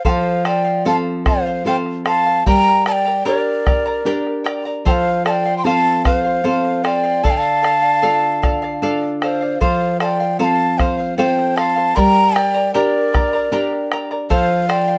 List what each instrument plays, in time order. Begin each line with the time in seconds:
0.05 nylon-string guitar F3, charango A4 C5 F5, pan flute C5, quena G5, bombo low
0.10 quena F5
0.44 charango A4 C5 F5, pan flute D5, quena G5, bombo rim
0.64 charango C5 F5
0.85 nylon-string guitar C4 F4 A4, charango A4 C5 F5, pan flute F5, quena A5, bombo rim
1.25 charango A4 C5 F5, pan flute C5, quena F5, bombo rim, bombo low
1.46 charango C5 F5
1.65 nylon-string guitar C4 F4 A4, charango A4 C5 F5, pan flute C5, quena G5
1.86 bombo rim
2.05 charango A4 C5 F5, pan flute F5, quena A5, bombo rim
2.26 charango C5 F5, bombo rim
2.46 nylon-string guitar G3, charango G4 A#4 D5 G5 A#5, pan flute G5, quena A#5, bombo low
2.86 charango A#4 D5 G5 A#5, pan flute D5, quena A5, bombo rim
2.92 quena G5
3.05 charango A#4 D5 A#5
3.25 nylon-string guitar D4 G4 A#4, charango G4 A#4 D5 G5 A#5, pan flute A#4, quena D5, bombo rim
3.66 charango A#4 D5 G5 A#5, bombo rim, bombo low
3.86 charango A#4 D5 A#5
4.05 nylon-string guitar D4 G4 A#4, charango G4 A#4 D5 G5 A#5
4.27 bombo rim
4.44 charango A#4 D5 G5 A#5, bombo rim
4.65 charango A#4 D5 A#5
4.85 nylon-string guitar F3, charango A4 C5 F5, pan flute C5, quena G5, bombo low
4.91 quena F5
5.25 charango A4 C5 F5, pan flute D5, quena A5, bombo rim
5.30 quena G5
5.45 charango C5 F5
5.57 pan flute G5, quena C6
5.64 nylon-string guitar C4 F4 A4, charango A4 C5 F5, pan flute F5, quena A5, bombo rim
6.04 charango A4 C5 F5, pan flute C5, quena F5, bombo rim, bombo low
6.24 charango C5 F5
6.44 nylon-string guitar C4 F4 A4, charango A4 C5 F5
6.65 bombo rim
6.84 charango A4 C5 F5, pan flute D5, quena G5, bombo rim
7.03 charango C5 F5, bombo rim
7.23 nylon-string guitar D3, charango A4 D5 F5, pan flute F5, quena A5, bombo rim, bombo low
7.30 pan flute D5, quena G5
7.38 pan flute F5, quena A5
7.62 charango A4 D5 F5, bombo rim
7.82 charango D5 F5
8.02 nylon-string guitar D4 F4 A4, charango A4 D5 F5, bombo rim
8.24 bombo rim
8.42 charango A4 D5 F5, bombo rim, bombo low
8.62 charango D5 F5, bombo rim
8.82 nylon-string guitar D4 F4 A4, charango A4 D5 F5, bombo rim
9.02 bombo rim
9.22 charango A4 D5 F5, pan flute C5, quena F5, bombo rim
9.41 charango D5 F5
9.61 nylon-string guitar F3, charango A4 C5 F5, pan flute C5, quena F5, bombo low
10.00 charango A4 C5 F5, pan flute D5, quena A5, bombo rim
10.05 quena G5
10.20 charango C5 F5
10.39 nylon-string guitar C4 F4 A4, charango A4 C5 F5, pan flute F5, quena A#5, bombo rim
10.44 quena A5
10.78 charango A4 C5 F5, pan flute C5, quena F5, bombo rim, bombo low
10.98 charango C5 F5
11.17 nylon-string guitar C4 F4 A4, charango A4 C5 F5, pan flute C5, quena G5
11.39 bombo rim
11.56 charango A4 C5 F5, pan flute F5, quena A5, bombo rim
11.76 charango C5 F5, bombo rim
11.95 nylon-string guitar G3, charango G4 A#4 D5 G5 A#5, pan flute G5, quena A#5 C6, bombo low
12.34 charango A#4 D5 G5 A#5, pan flute D5, quena G5, bombo rim
12.54 charango A#4 D5 A#5
12.74 nylon-string guitar D4 G4 A#4, charango G4 A#4 D5 G5 A#5, pan flute A#4, quena D5, bombo rim
13.13 charango A#4 D5 G5 A#5, bombo rim, bombo low
13.33 charango A#4 D5 A#5
13.52 nylon-string guitar D4 G4 A#4, charango G4 A#4 D5 G5 A#5
13.73 bombo rim
13.92 charango A#4 D5 G5 A#5, bombo rim
14.11 charango A#4 D5 A#5, bombo rim
14.30 nylon-string guitar F3, charango A4 C5 F5, pan flute C5, quena F5, bombo low
14.68 charango A4 C5 F5, pan flute D5, quena G5, bombo rim
14.87 charango C5 F5